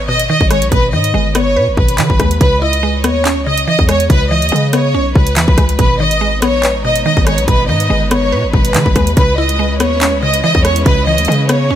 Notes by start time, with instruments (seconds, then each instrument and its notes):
Already playing: synth pluck D#3 G#3 B3 B4
0.00 808-style bass G#1
0.08 synth pluck B2, violin section D#5
0.20 closed hi-hat
0.29 synth pluck D#3, violin section D#5
0.41 808-style bass G#1, kick
0.51 synth pluck G#3, violin section C#5, cross-stick, closed hi-hat
0.62 808-style bass B1, closed hi-hat
0.72 808-style bass G#1, synth pluck B2, violin section B4, kick, closed hi-hat
0.93 808-style bass G#2, synth pluck D#3, violin section D#5
1.04 closed hi-hat
1.14 808-style bass G1, synth pluck G#3
1.35 synth pluck B3, violin section C#5, cross-stick, closed hi-hat
1.56 808-style bass B2, synth pluck B4
1.67 808-style bass G1
1.77 808-style bass G#1, synth pluck B2, violin section B4, kick
1.88 closed hi-hat
1.98 808-style bass D#3, synth pluck D#3, clap, closed hi-hat
2.10 808-style bass G#1, kick
2.20 808-style bass D#2, synth pluck G#3, kick, cross-stick, closed hi-hat
2.31 closed hi-hat
2.41 808-style bass C#2, synth pluck C#3, violin section B4, kick, closed hi-hat
2.62 synth pluck E4, violin section D#5
2.73 closed hi-hat
2.83 synth pluck G#3
3.04 808-style bass D#2, synth pluck B3, violin section C#5, cross-stick, closed hi-hat
3.25 synth pluck C#4, clap, closed hi-hat
3.37 808-style bass C#2
3.46 synth pluck C#3, violin section D#5
3.58 closed hi-hat
3.67 synth pluck E3, violin section D#5
3.79 808-style bass E2, kick
3.89 synth pluck G#3, violin section C#5, cross-stick, closed hi-hat
4.00 closed hi-hat
4.10 808-style bass C#2, synth pluck C#3, violin section B4, kick, closed hi-hat
4.31 synth pluck E3, violin section D#5
4.42 808-style bass D#2, closed hi-hat
4.49 808-style bass C#3, synth pluck G#3, closed hi-hat
4.56 closed hi-hat
4.73 synth pluck B3, violin section C#5, cross-stick, closed hi-hat
4.94 808-style bass B1, synth pluck C#4
5.15 808-style bass C#2, synth pluck C#3, violin section B4, kick
5.27 closed hi-hat
5.36 808-style bass E2, synth pluck E3, clap, closed hi-hat
5.48 808-style bass C#2, kick
5.58 808-style bass C#2, synth pluck G#3, kick, cross-stick, closed hi-hat
5.69 closed hi-hat
5.79 808-style bass G#1, synth pluck B2, string section G#3 B3 D#4 B4, violin section B4, kick, closed hi-hat
6.00 synth pluck D#3, violin section D#5
6.11 closed hi-hat
6.21 synth pluck G#3
6.42 808-style bass A#1, synth pluck B3, violin section C#5, cross-stick, closed hi-hat
6.63 synth pluck B4, clap, closed hi-hat
6.75 808-style bass G#1
6.85 synth pluck B2, violin section D#5
6.96 closed hi-hat
7.06 synth pluck D#3, violin section D#5
7.17 808-style bass G#1, kick
7.27 synth pluck G#3, violin section C#5, cross-stick, closed hi-hat
7.38 808-style bass B1, closed hi-hat
7.48 808-style bass G#1, synth pluck B2, violin section B4, kick, closed hi-hat
7.69 808-style bass G#2, synth pluck D#3, violin section D#5
7.80 closed hi-hat
7.90 808-style bass G1, synth pluck G#3
8.11 synth pluck B3, violin section C#5, cross-stick, closed hi-hat
8.32 808-style bass B2, synth pluck B4
8.44 808-style bass G1
8.53 808-style bass G#1, synth pluck B2, violin section B4, kick
8.65 closed hi-hat
8.74 808-style bass D#3, synth pluck D#3, clap, closed hi-hat
8.86 808-style bass G#1, kick
8.96 808-style bass D#2, synth pluck G#3, kick, cross-stick, closed hi-hat
9.07 closed hi-hat
9.17 808-style bass C#2, synth pluck C#3, string section C#4 E4, violin section B4, kick, closed hi-hat
9.38 synth pluck E4, violin section D#5
9.49 closed hi-hat
9.59 synth pluck G#3
9.80 808-style bass D#2, synth pluck B3, violin section C#5, cross-stick, closed hi-hat
10.01 synth pluck C#4, clap, closed hi-hat
10.13 808-style bass C#2
10.22 synth pluck C#3, violin section D#5
10.34 closed hi-hat
10.43 synth pluck E3, violin section D#5
10.55 808-style bass E2, kick
10.65 synth pluck G#3, violin section C#5, cross-stick, closed hi-hat
10.76 closed hi-hat
10.86 808-style bass C#2, synth pluck C#3, violin section B4, kick, closed hi-hat
11.07 synth pluck E3, violin section D#5
11.18 808-style bass D#2, closed hi-hat
11.25 808-style bass C#3, synth pluck G#3, closed hi-hat
11.32 closed hi-hat
11.49 synth pluck B3, violin section C#5, cross-stick, closed hi-hat
11.70 808-style bass B1, synth pluck C#4